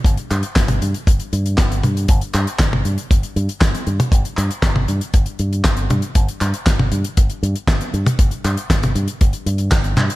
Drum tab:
HH |xxxxxxxxxxxxxxxx|xxxxx-xxxxxxxxxx|xxxxx-xxxxxxxxxx|xxxxx-xxxxxxxxxx|
CP |--x-x-------x---|--x-x-------x---|--x-x-------x---|--x-x-------x---|
SD |----o-------o---|----o-------o---|----o-------o---|----o-------o---|
T1 |-----o--------o-|-----o---------o|-----o--------o-|-----o---------o|
BD |o---o---o---o---|o---o---o---o---|o---o---o---o---|o---o---o---o---|

HH |xxxxxxxxxxxxxxxx|
CP |--x-x-------x-x-|
SD |----o-------o---|
T1 |-----o--------o-|
BD |o---o---o---o---|